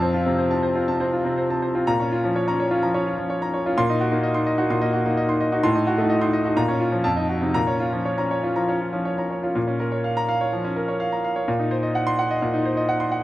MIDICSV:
0, 0, Header, 1, 2, 480
1, 0, Start_track
1, 0, Key_signature, -5, "minor"
1, 0, Tempo, 493421
1, 1828, Time_signature, 4, 2, 24, 8
1, 2297, Tempo, 468384
1, 7097, Tempo, 500000
1, 9977, Tempo, 472069
1, 13220, End_track
2, 0, Start_track
2, 0, Title_t, "Grand piano"
2, 0, Program_c, 0, 0
2, 0, Note_on_c, 0, 41, 67
2, 18, Note_on_c, 0, 60, 43
2, 18, Note_on_c, 0, 72, 39
2, 110, Control_c, 0, 64, 127
2, 136, Note_on_c, 0, 65, 55
2, 207, Note_off_c, 0, 60, 0
2, 208, Note_off_c, 0, 72, 0
2, 252, Note_on_c, 0, 48, 47
2, 254, Note_on_c, 0, 60, 47
2, 327, Note_off_c, 0, 65, 0
2, 373, Note_on_c, 0, 72, 48
2, 445, Note_off_c, 0, 48, 0
2, 446, Note_off_c, 0, 60, 0
2, 493, Note_on_c, 0, 81, 50
2, 494, Note_on_c, 0, 60, 47
2, 566, Note_off_c, 0, 72, 0
2, 610, Note_on_c, 0, 72, 52
2, 687, Note_off_c, 0, 60, 0
2, 687, Note_off_c, 0, 81, 0
2, 731, Note_on_c, 0, 65, 46
2, 733, Note_on_c, 0, 60, 41
2, 807, Note_off_c, 0, 72, 0
2, 828, Note_off_c, 0, 41, 0
2, 856, Note_on_c, 0, 48, 38
2, 856, Note_on_c, 0, 81, 47
2, 929, Note_off_c, 0, 65, 0
2, 930, Note_off_c, 0, 60, 0
2, 974, Note_on_c, 0, 60, 47
2, 974, Note_on_c, 0, 72, 47
2, 1052, Note_off_c, 0, 48, 0
2, 1052, Note_off_c, 0, 81, 0
2, 1099, Note_on_c, 0, 65, 40
2, 1172, Note_off_c, 0, 60, 0
2, 1172, Note_off_c, 0, 72, 0
2, 1213, Note_on_c, 0, 48, 46
2, 1215, Note_on_c, 0, 60, 45
2, 1295, Note_off_c, 0, 65, 0
2, 1338, Note_on_c, 0, 72, 50
2, 1412, Note_off_c, 0, 48, 0
2, 1413, Note_off_c, 0, 60, 0
2, 1461, Note_on_c, 0, 60, 40
2, 1462, Note_on_c, 0, 81, 42
2, 1535, Note_off_c, 0, 72, 0
2, 1580, Note_on_c, 0, 72, 45
2, 1657, Note_off_c, 0, 60, 0
2, 1658, Note_off_c, 0, 81, 0
2, 1699, Note_on_c, 0, 65, 43
2, 1701, Note_on_c, 0, 60, 43
2, 1776, Note_off_c, 0, 72, 0
2, 1820, Note_on_c, 0, 82, 80
2, 1821, Note_on_c, 0, 46, 61
2, 1823, Note_off_c, 0, 65, 0
2, 1824, Note_off_c, 0, 60, 0
2, 1844, Control_c, 0, 64, 0
2, 1940, Note_on_c, 0, 73, 42
2, 1942, Note_on_c, 0, 61, 42
2, 2013, Note_off_c, 0, 82, 0
2, 2014, Control_c, 0, 64, 127
2, 2061, Note_on_c, 0, 65, 54
2, 2132, Note_off_c, 0, 73, 0
2, 2133, Note_off_c, 0, 61, 0
2, 2178, Note_on_c, 0, 61, 43
2, 2179, Note_on_c, 0, 53, 51
2, 2249, Note_off_c, 0, 65, 0
2, 2294, Note_on_c, 0, 73, 57
2, 2367, Note_off_c, 0, 61, 0
2, 2368, Note_off_c, 0, 53, 0
2, 2416, Note_on_c, 0, 61, 53
2, 2416, Note_on_c, 0, 82, 60
2, 2487, Note_off_c, 0, 73, 0
2, 2538, Note_on_c, 0, 73, 58
2, 2606, Note_off_c, 0, 61, 0
2, 2606, Note_off_c, 0, 82, 0
2, 2652, Note_on_c, 0, 65, 53
2, 2655, Note_on_c, 0, 61, 51
2, 2727, Note_off_c, 0, 73, 0
2, 2741, Note_off_c, 0, 46, 0
2, 2772, Note_on_c, 0, 53, 50
2, 2773, Note_on_c, 0, 82, 53
2, 2844, Note_off_c, 0, 65, 0
2, 2846, Note_off_c, 0, 61, 0
2, 2892, Note_on_c, 0, 73, 58
2, 2893, Note_on_c, 0, 61, 47
2, 2965, Note_off_c, 0, 53, 0
2, 2966, Note_off_c, 0, 82, 0
2, 3016, Note_on_c, 0, 65, 48
2, 3086, Note_off_c, 0, 73, 0
2, 3087, Note_off_c, 0, 61, 0
2, 3133, Note_on_c, 0, 53, 45
2, 3135, Note_on_c, 0, 61, 43
2, 3210, Note_off_c, 0, 65, 0
2, 3256, Note_on_c, 0, 73, 54
2, 3329, Note_off_c, 0, 53, 0
2, 3331, Note_off_c, 0, 61, 0
2, 3381, Note_on_c, 0, 61, 40
2, 3382, Note_on_c, 0, 82, 54
2, 3452, Note_off_c, 0, 73, 0
2, 3500, Note_on_c, 0, 73, 50
2, 3574, Note_off_c, 0, 61, 0
2, 3575, Note_off_c, 0, 82, 0
2, 3629, Note_on_c, 0, 65, 52
2, 3630, Note_on_c, 0, 61, 47
2, 3693, Note_off_c, 0, 73, 0
2, 3745, Note_off_c, 0, 65, 0
2, 3745, Note_on_c, 0, 46, 71
2, 3746, Note_off_c, 0, 61, 0
2, 3748, Note_on_c, 0, 84, 87
2, 3762, Control_c, 0, 64, 0
2, 3868, Note_on_c, 0, 63, 44
2, 3870, Note_on_c, 0, 75, 51
2, 3930, Control_c, 0, 64, 127
2, 3934, Note_off_c, 0, 84, 0
2, 3981, Note_on_c, 0, 66, 57
2, 4052, Note_off_c, 0, 63, 0
2, 4053, Note_off_c, 0, 75, 0
2, 4096, Note_on_c, 0, 63, 47
2, 4098, Note_on_c, 0, 58, 51
2, 4166, Note_off_c, 0, 66, 0
2, 4216, Note_on_c, 0, 75, 60
2, 4283, Note_off_c, 0, 63, 0
2, 4284, Note_off_c, 0, 58, 0
2, 4329, Note_on_c, 0, 63, 55
2, 4329, Note_on_c, 0, 84, 58
2, 4403, Note_off_c, 0, 75, 0
2, 4453, Note_on_c, 0, 75, 62
2, 4520, Note_off_c, 0, 63, 0
2, 4520, Note_off_c, 0, 84, 0
2, 4570, Note_on_c, 0, 66, 57
2, 4571, Note_on_c, 0, 63, 53
2, 4643, Note_off_c, 0, 75, 0
2, 4663, Note_off_c, 0, 46, 0
2, 4697, Note_on_c, 0, 46, 55
2, 4698, Note_on_c, 0, 84, 58
2, 4764, Note_off_c, 0, 63, 0
2, 4764, Note_off_c, 0, 66, 0
2, 4811, Note_on_c, 0, 75, 60
2, 4813, Note_on_c, 0, 58, 53
2, 4888, Note_off_c, 0, 84, 0
2, 4934, Note_on_c, 0, 66, 52
2, 5005, Note_off_c, 0, 75, 0
2, 5006, Note_off_c, 0, 58, 0
2, 5059, Note_on_c, 0, 58, 50
2, 5059, Note_on_c, 0, 63, 49
2, 5126, Note_off_c, 0, 66, 0
2, 5178, Note_on_c, 0, 75, 61
2, 5247, Note_off_c, 0, 58, 0
2, 5248, Note_off_c, 0, 63, 0
2, 5297, Note_on_c, 0, 63, 46
2, 5298, Note_on_c, 0, 84, 51
2, 5366, Note_off_c, 0, 75, 0
2, 5417, Note_on_c, 0, 75, 54
2, 5484, Note_off_c, 0, 63, 0
2, 5485, Note_off_c, 0, 84, 0
2, 5536, Note_on_c, 0, 63, 57
2, 5537, Note_on_c, 0, 66, 54
2, 5604, Note_off_c, 0, 75, 0
2, 5624, Note_off_c, 0, 46, 0
2, 5651, Note_on_c, 0, 84, 84
2, 5652, Note_off_c, 0, 63, 0
2, 5652, Note_on_c, 0, 45, 76
2, 5653, Note_off_c, 0, 66, 0
2, 5668, Control_c, 0, 64, 0
2, 5771, Note_on_c, 0, 75, 51
2, 5774, Note_on_c, 0, 63, 49
2, 5842, Note_off_c, 0, 84, 0
2, 5848, Control_c, 0, 64, 127
2, 5891, Note_on_c, 0, 66, 61
2, 5962, Note_off_c, 0, 75, 0
2, 5963, Note_off_c, 0, 63, 0
2, 6007, Note_on_c, 0, 57, 52
2, 6007, Note_on_c, 0, 63, 53
2, 6082, Note_off_c, 0, 66, 0
2, 6125, Note_on_c, 0, 75, 60
2, 6199, Note_off_c, 0, 57, 0
2, 6199, Note_off_c, 0, 63, 0
2, 6246, Note_on_c, 0, 84, 61
2, 6247, Note_on_c, 0, 63, 56
2, 6318, Note_off_c, 0, 75, 0
2, 6367, Note_on_c, 0, 75, 58
2, 6439, Note_off_c, 0, 63, 0
2, 6439, Note_off_c, 0, 84, 0
2, 6486, Note_on_c, 0, 63, 52
2, 6490, Note_on_c, 0, 66, 50
2, 6560, Note_off_c, 0, 75, 0
2, 6580, Note_off_c, 0, 45, 0
2, 6606, Note_on_c, 0, 46, 64
2, 6607, Note_off_c, 0, 63, 0
2, 6607, Note_on_c, 0, 82, 77
2, 6609, Note_off_c, 0, 66, 0
2, 6629, Control_c, 0, 64, 0
2, 6723, Note_on_c, 0, 61, 52
2, 6727, Note_on_c, 0, 73, 51
2, 6794, Control_c, 0, 64, 127
2, 6801, Note_off_c, 0, 82, 0
2, 6846, Note_on_c, 0, 65, 51
2, 6921, Note_off_c, 0, 61, 0
2, 6923, Note_off_c, 0, 73, 0
2, 6969, Note_on_c, 0, 53, 49
2, 6970, Note_on_c, 0, 61, 45
2, 7045, Note_off_c, 0, 65, 0
2, 7081, Note_off_c, 0, 46, 0
2, 7093, Note_on_c, 0, 81, 68
2, 7094, Note_on_c, 0, 41, 64
2, 7096, Note_off_c, 0, 53, 0
2, 7096, Note_off_c, 0, 61, 0
2, 7114, Control_c, 0, 64, 0
2, 7213, Note_on_c, 0, 75, 49
2, 7214, Note_on_c, 0, 63, 38
2, 7284, Note_off_c, 0, 81, 0
2, 7289, Control_c, 0, 64, 127
2, 7333, Note_on_c, 0, 66, 42
2, 7405, Note_off_c, 0, 63, 0
2, 7405, Note_off_c, 0, 75, 0
2, 7453, Note_on_c, 0, 48, 45
2, 7454, Note_on_c, 0, 63, 43
2, 7527, Note_off_c, 0, 66, 0
2, 7561, Note_off_c, 0, 41, 0
2, 7573, Note_on_c, 0, 46, 62
2, 7576, Note_off_c, 0, 48, 0
2, 7576, Note_on_c, 0, 82, 80
2, 7577, Note_off_c, 0, 63, 0
2, 7595, Control_c, 0, 64, 0
2, 7695, Note_on_c, 0, 61, 42
2, 7696, Note_on_c, 0, 73, 49
2, 7753, Control_c, 0, 64, 127
2, 7774, Note_off_c, 0, 82, 0
2, 7822, Note_on_c, 0, 65, 54
2, 7895, Note_off_c, 0, 61, 0
2, 7896, Note_off_c, 0, 73, 0
2, 7943, Note_on_c, 0, 53, 47
2, 7945, Note_on_c, 0, 61, 46
2, 8020, Note_off_c, 0, 65, 0
2, 8065, Note_on_c, 0, 73, 51
2, 8141, Note_off_c, 0, 53, 0
2, 8142, Note_off_c, 0, 61, 0
2, 8183, Note_on_c, 0, 61, 49
2, 8185, Note_on_c, 0, 82, 50
2, 8262, Note_off_c, 0, 73, 0
2, 8310, Note_on_c, 0, 73, 54
2, 8381, Note_off_c, 0, 61, 0
2, 8382, Note_off_c, 0, 82, 0
2, 8429, Note_on_c, 0, 65, 49
2, 8430, Note_on_c, 0, 61, 44
2, 8504, Note_off_c, 0, 73, 0
2, 8523, Note_off_c, 0, 46, 0
2, 8549, Note_on_c, 0, 82, 49
2, 8551, Note_on_c, 0, 53, 41
2, 8623, Note_off_c, 0, 61, 0
2, 8623, Note_off_c, 0, 65, 0
2, 8671, Note_on_c, 0, 73, 43
2, 8672, Note_on_c, 0, 61, 44
2, 8742, Note_off_c, 0, 82, 0
2, 8743, Note_off_c, 0, 53, 0
2, 8787, Note_on_c, 0, 65, 37
2, 8861, Note_off_c, 0, 73, 0
2, 8862, Note_off_c, 0, 61, 0
2, 8903, Note_on_c, 0, 53, 43
2, 8904, Note_on_c, 0, 61, 45
2, 8979, Note_off_c, 0, 65, 0
2, 9023, Note_on_c, 0, 73, 52
2, 9097, Note_off_c, 0, 53, 0
2, 9097, Note_off_c, 0, 61, 0
2, 9147, Note_on_c, 0, 61, 36
2, 9148, Note_on_c, 0, 82, 38
2, 9218, Note_off_c, 0, 73, 0
2, 9266, Note_on_c, 0, 73, 38
2, 9342, Note_off_c, 0, 61, 0
2, 9342, Note_off_c, 0, 82, 0
2, 9388, Note_on_c, 0, 61, 37
2, 9388, Note_on_c, 0, 65, 44
2, 9460, Note_off_c, 0, 73, 0
2, 9506, Note_on_c, 0, 46, 61
2, 9508, Note_off_c, 0, 61, 0
2, 9508, Note_off_c, 0, 65, 0
2, 9529, Control_c, 0, 64, 0
2, 9621, Note_on_c, 0, 61, 45
2, 9704, Control_c, 0, 64, 127
2, 9739, Note_on_c, 0, 70, 51
2, 9810, Note_off_c, 0, 61, 0
2, 9854, Note_on_c, 0, 73, 49
2, 9927, Note_off_c, 0, 70, 0
2, 9974, Note_on_c, 0, 77, 52
2, 10046, Note_off_c, 0, 73, 0
2, 10101, Note_on_c, 0, 82, 71
2, 10170, Note_off_c, 0, 77, 0
2, 10222, Note_on_c, 0, 77, 57
2, 10295, Note_off_c, 0, 82, 0
2, 10347, Note_on_c, 0, 73, 49
2, 10415, Note_off_c, 0, 77, 0
2, 10431, Note_off_c, 0, 46, 0
2, 10467, Note_on_c, 0, 53, 47
2, 10538, Note_off_c, 0, 73, 0
2, 10587, Note_on_c, 0, 61, 53
2, 10658, Note_off_c, 0, 53, 0
2, 10708, Note_on_c, 0, 70, 44
2, 10779, Note_off_c, 0, 61, 0
2, 10827, Note_on_c, 0, 73, 52
2, 10900, Note_off_c, 0, 70, 0
2, 10947, Note_on_c, 0, 77, 54
2, 11020, Note_off_c, 0, 73, 0
2, 11073, Note_on_c, 0, 82, 48
2, 11140, Note_off_c, 0, 77, 0
2, 11195, Note_on_c, 0, 77, 49
2, 11264, Note_off_c, 0, 82, 0
2, 11312, Note_on_c, 0, 73, 47
2, 11385, Note_off_c, 0, 77, 0
2, 11432, Note_off_c, 0, 73, 0
2, 11436, Note_on_c, 0, 46, 65
2, 11449, Control_c, 0, 64, 0
2, 11551, Note_on_c, 0, 63, 49
2, 11640, Control_c, 0, 64, 127
2, 11670, Note_on_c, 0, 72, 53
2, 11744, Note_off_c, 0, 63, 0
2, 11791, Note_on_c, 0, 75, 53
2, 11863, Note_off_c, 0, 72, 0
2, 11915, Note_on_c, 0, 78, 62
2, 11984, Note_off_c, 0, 75, 0
2, 12033, Note_on_c, 0, 84, 85
2, 12106, Note_off_c, 0, 78, 0
2, 12155, Note_on_c, 0, 78, 67
2, 12225, Note_off_c, 0, 84, 0
2, 12277, Note_on_c, 0, 75, 61
2, 12346, Note_off_c, 0, 78, 0
2, 12367, Note_off_c, 0, 46, 0
2, 12393, Note_on_c, 0, 46, 59
2, 12466, Note_off_c, 0, 75, 0
2, 12511, Note_on_c, 0, 63, 49
2, 12628, Note_on_c, 0, 72, 51
2, 12699, Note_off_c, 0, 63, 0
2, 12748, Note_on_c, 0, 75, 54
2, 12817, Note_off_c, 0, 72, 0
2, 12866, Note_on_c, 0, 78, 66
2, 12935, Note_off_c, 0, 75, 0
2, 12982, Note_on_c, 0, 84, 59
2, 13054, Note_off_c, 0, 78, 0
2, 13100, Note_on_c, 0, 78, 55
2, 13171, Note_off_c, 0, 84, 0
2, 13220, Note_off_c, 0, 46, 0
2, 13220, Note_off_c, 0, 78, 0
2, 13220, End_track
0, 0, End_of_file